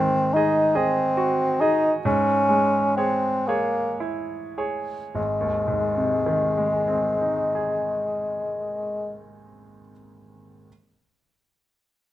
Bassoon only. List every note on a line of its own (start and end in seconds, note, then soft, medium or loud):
0.00 0.35 C4 medium
0.34 0.78 D#4 medium
0.77 1.62 C4 medium
1.61 1.92 D#4 medium
2.06 2.96 C#4 medium
2.97 3.49 C4 medium
3.47 4.00 A#3 soft
5.15 9.22 G#3 soft